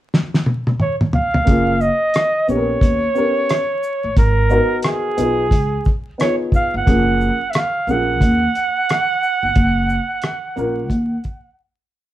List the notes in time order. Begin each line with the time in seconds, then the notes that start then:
0.14 snare
0.34 snare
0.46 high tom
0.67 high tom
0.80 C#5, mid tom
1.01 mid tom
1.13 F5, floor tom
1.34 floor tom
1.45 F#1 A#3 C#4 F4 G#4, kick, closed hi-hat
1.81 D#5, shaker
2.14 cross-stick, closed hi-hat
2.47 A#1 B3 C#4 G4 A4 C#5, shaker
2.57 A#4
2.81 D#2, kick, closed hi-hat
3.15 B3 C#4 G4 A#4, shaker
3.49 cross-stick, closed hi-hat
3.83 shaker
4.04 A1
4.17 G#1 A#4, kick, closed hi-hat
4.49 B3 D#4 F#4 A#4, shaker
4.83 G#4, cross-stick, closed hi-hat
5.17 B1 B3 D#4 F4 G#4, closed hi-hat, shaker
5.51 C#2, kick, closed hi-hat
5.85 kick, shaker
6.18 B3 D#4 F4 G#4 C#5, cross-stick, closed hi-hat
6.52 F5, kick, shaker
6.74 G1 F#5
6.86 F#1 F3 A#3 C#4 G#4, kick, closed hi-hat
7.21 shaker
7.51 E5, closed hi-hat
7.55 F5, cross-stick
7.87 A#1 F3 A#3 C#4 G#4 F#5, shaker
8.21 D#2, kick, closed hi-hat
8.55 closed hi-hat, shaker
8.89 cross-stick, closed hi-hat
9.23 shaker
9.43 G1
9.56 F#1, kick, closed hi-hat
9.89 shaker
10.22 cross-stick, closed hi-hat
10.56 A#1 A#3 C#4 F4 A#4, shaker
10.90 D#2, kick, closed hi-hat
11.24 kick, closed hi-hat, shaker